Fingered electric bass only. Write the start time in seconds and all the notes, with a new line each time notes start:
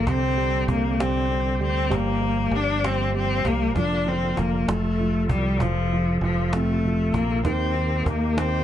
0.07 C2
0.68 C2
1.61 D2
1.92 G1
2.51 G1
3.45 C2
3.76 F1
4.37 F1
4.68 F1
5.29 C2
5.60 F1
6.21 F1
7.14 A#1
7.45 D#2
8.06 D#2